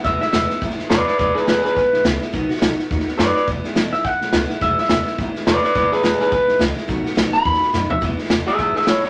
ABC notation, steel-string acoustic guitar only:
X:1
M:4/4
L:1/8
Q:"Swing" 1/4=211
K:E
V:1 name="Steel-string acoustic guitar" clef=bass
[E,,B,,E,G,B,E] [E,G,B,E] [E,,B,,E,G,B,E] [E,G,B,E] [E,G,B,E] [E,G,B,E] [E,,B,,E,G,B,E] [E,G,B,E] | [E,,B,,E,G,B,E] [E,G,B,E] [E,,B,,E,G,B,E] [E,G,B,E] [E,G,B,E] [E,G,B,E] [E,,B,,E,G,B,E] [E,G,B,E] | [B,,D,A,B,F] [A,B,F] [B,,D,A,B,F] [A,B,F] [D,A,B,F] [A,B,F] [B,,D,A,B,F] [A,B,F] | [E,,B,,E,G,B,E] [E,G,B,E] [E,,B,,E,G,B,E] [E,G,B,E] [E,G,B,E] [E,G,B,E] [E,,B,,E,G,B,E] [E,G,B,E] |
[E,,B,,E,G,B,E] [E,G,B,E] [E,,B,,E,G,B,E] [E,G,B,E] [E,G,B,E] [E,G,B,E] [E,,B,,E,G,B,E] [E,G,B,E] | [E,,B,,E,G,B,E] [E,G,B,E] [E,,B,,E,G,B,E] [E,G,B,E] [E,G,B,E] [E,G,B,E] [E,,B,,E,G,B,E] [E,G,B,E] | [B,,D,A,B,F] [A,B,F] [B,,D,A,B,F] [A,B,F] [D,A,B,F] [A,B,F] [B,,D,A,B,F] [A,B,F] | [E,,B,,E,G,B,E] [E,G,B,E] [E,G,B,E] [E,G,B,E] [E,,B,,E,G,B,E] [E,G,B,E] [E,G,B,E] [E,G,B,E] |]